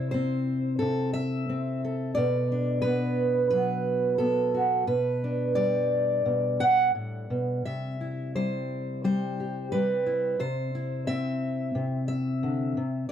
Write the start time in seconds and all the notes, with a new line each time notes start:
Already playing: C3 E4
0.11 C4 C5
0.79 C3 A4
1.13 E5
1.49 C4
1.84 A4
2.15 B2 D5
2.52 D4
2.82 B3 B4
3.50 F#3 B4
4.18 B3 A4
4.54 F#4
4.87 B2 B4
5.24 D4
5.55 G3 D5
6.25 B2
6.60 F#5
6.95 A2
7.30 B2
7.65 C3 E5
8.01 E4
8.36 G3 C5
9.04 G3 C5
9.40 G4
9.72 G3 B4
10.06 E4
10.39 C3 C5
10.75 E4
11.07 C4 E5
11.75 C3
12.08 E5
12.43 D3
12.77 C3
13.09 D5